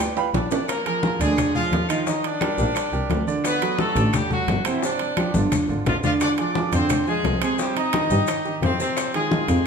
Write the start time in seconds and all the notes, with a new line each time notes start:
0.00 G4 B4 D5 G5, high conga, maracas
0.17 B4 F5 G5 B5, high conga, high timbale, maracas
0.33 A#1 D4 D5, low bongo, high conga, high timbale, maracas
0.51 D4 D5, low bongo, high conga, low timbale, maracas
0.68 A#3 A#4, high bongo, high conga, high timbale, claves, maracas
0.85 F3 A#3 F4 G#4 A#4, high conga, high timbale, maracas
1.02 F3 F4 G#4, high bongo, high conga, maracas
1.20 D2 D3 G#3 D4 G#4 D5, high bongo, high conga, high timbale, maracas
1.37 high bongo, high conga, low conga, high timbale, claves, maracas
1.55 F3 F4 G#4, high bongo, high conga, low conga, maracas
1.71 D#2, high bongo, low bongo, high conga, high timbale, low timbale, maracas
1.89 D#3 F3 D#4 F4 D#5, high bongo, high timbale, claves, maracas
2.07 D#3 D#4 D#5, high bongo, high conga, maracas
2.24 D4 D5, high conga, high timbale, maracas
2.41 G3 G4 A#4, high bongo, high conga, high timbale, claves, maracas
2.58 A#1 G3 G4 A#4, high bongo, high conga, maracas
2.75 high bongo, high conga, high timbale, claves, maracas
2.92 C2 G3 G4 A#4, high bongo, high conga, maracas
3.10 D2, high bongo, low bongo, high conga, high timbale, low timbale, maracas
3.27 D3 D4 D5, high bongo, high conga, maracas
3.44 B3 B4, high bongo, high conga, high timbale, claves, maracas
3.62 F#3 F#4 A4, high conga, high timbale, maracas
3.79 F#3 A3 F#4 A4, high bongo, high conga, maracas
3.96 A1 D3 D4 D5, high bongo, high conga, high timbale, maracas
4.13 G3 G4, high bongo, high conga, low conga, high timbale, claves, maracas
4.30 F#3 F#4 A4, high bongo, high conga, low conga, maracas
4.48 G1, high bongo, low bongo, high conga, high timbale, low timbale, maracas
4.65 C3 E3 C4 E4 C5, high bongo, high timbale, claves, maracas
4.82 C3 C4 D4 C5 D5, high bongo, high conga, maracas
4.99 high conga, high timbale, maracas
5.17 F3 F4 G4, high bongo, high conga, high timbale, claves, maracas
5.34 G1 D3 D4 F4, high bongo, high conga, maracas
5.52 high bongo, low conga, high timbale, claves, maracas
5.68 G#1 D3 D4 F4, high bongo, maracas
5.86 A#1 F3 F4, high bongo, low bongo, low conga, high timbale, low timbale, maracas
6.03 D3 F3 D4 F4 D5, high bongo, low conga, maracas
6.20 D4 D5, high bongo, high conga, high timbale, claves, maracas
6.38 F3 D4 F4 G#4 D5, high conga, high timbale, maracas
6.55 F3 F4 G#4, high bongo, high conga, maracas
6.73 F2 D3 C4 D4 C5 D5, high bongo, high conga, high timbale, maracas
6.89 high bongo, high conga, low conga, high timbale, claves, maracas
7.07 F3 G#3 F4 G#4, high bongo, high conga, maracas
7.24 C2, high bongo, low bongo, high conga, high timbale, low timbale, maracas
7.41 C3 G#3 C4 G#4 C5, high bongo, high timbale, claves, maracas
7.59 C3 G3 C4 G4 C5, high bongo, high conga, maracas
7.76 D#4 D#5, high conga, high timbale, maracas
7.93 D#3 D#4 G4, high bongo, high conga, high timbale, claves, maracas
8.10 G2 D#3 D#4 G4, high bongo, high conga, maracas
8.27 high bongo, high conga, high timbale, claves, maracas
8.45 D#3 D#4 G4, high bongo, high conga, maracas
8.62 F2 C4 C5, high bongo, low bongo, high conga, high timbale, low timbale, maracas
8.79 C3 C4 C5, high bongo, high conga, maracas
8.96 high bongo, high conga, high timbale, claves, maracas
9.14 D#3 G#3 D#4 F4 G#4, high conga, high timbale, maracas
9.31 D#3 D#4 F4, high bongo, high conga, maracas
9.48 F2 C3 C4 C5, high bongo, high conga, high timbale, maracas